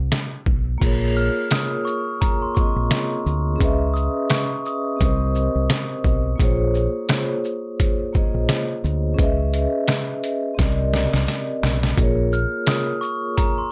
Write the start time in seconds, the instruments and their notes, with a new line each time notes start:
0.12 snare, closed hi-hat
0.46 fingered electric bass B1, kick
0.78 fingered electric bass A#1, vibraphone A#3 F4, kick, crash
0.82 vibraphone G#4 A#4, closed hi-hat
0.86 vibraphone C#5
1.17 glockenspiel F6, shaker
1.51 glockenspiel D#6, snare, closed hi-hat
1.85 glockenspiel C#6, shaker
2.21 glockenspiel A#5, kick, closed hi-hat
2.42 glockenspiel C6
2.54 vibraphone A#3 C4 F4 G#4, glockenspiel C#6, kick, shaker
2.59 vibraphone D#5
2.76 fingered electric bass A#1
2.91 snare, closed hi-hat
3.26 fingered electric bass D2, shaker
3.56 vibraphone C#4 G#4
3.60 fingered electric bass C#2, vibraphone B4 D#5, kick, closed hi-hat
3.64 vibraphone E5
3.94 glockenspiel D#6, shaker
4.30 glockenspiel C#6, snare, closed hi-hat
4.66 glockenspiel D#6, shaker
4.97 vibraphone C4 G4
5.01 fingered electric bass C2, vibraphone A#4 C5, kick, closed hi-hat
5.05 vibraphone D#5
5.35 shaker
5.55 fingered electric bass C2
5.70 snare, closed hi-hat
6.04 fingered electric bass B1, kick, shaker
6.36 vibraphone A#3 F4, kick
6.40 fingered electric bass A#1, vibraphone G#4 C5, closed hi-hat
6.44 vibraphone C#5
6.75 shaker
7.09 snare, closed hi-hat
7.45 shaker
7.80 kick, closed hi-hat
8.13 vibraphone A#3 F4 G#4 C5, kick, shaker
8.17 vibraphone D#5
8.34 fingered electric bass A#1
8.49 snare, closed hi-hat
8.84 fingered electric bass D2, shaker
9.14 vibraphone C#4 G#4
9.19 fingered electric bass C#2, vibraphone B4 D#5, kick, closed hi-hat
9.23 vibraphone E5
9.54 closed hi-hat, shaker
9.88 snare, closed hi-hat
10.24 closed hi-hat, shaker
10.54 vibraphone C4 G4
10.59 fingered electric bass C2, vibraphone A#4 D5, kick, snare, closed hi-hat
10.63 vibraphone D#5
10.93 snare, shaker
11.14 fingered electric bass C2, snare
11.28 snare, closed hi-hat
11.63 fingered electric bass B1, snare, shaker
11.83 snare
11.94 fingered electric bass A#1, vibraphone A#3 F4, kick, closed hi-hat
11.98 vibraphone G#4 A#4
12.03 vibraphone C#5
12.33 glockenspiel F6, shaker
12.67 glockenspiel D#6, snare, closed hi-hat
13.01 glockenspiel C#6, shaker
13.37 glockenspiel A#5, kick, closed hi-hat
13.58 glockenspiel C6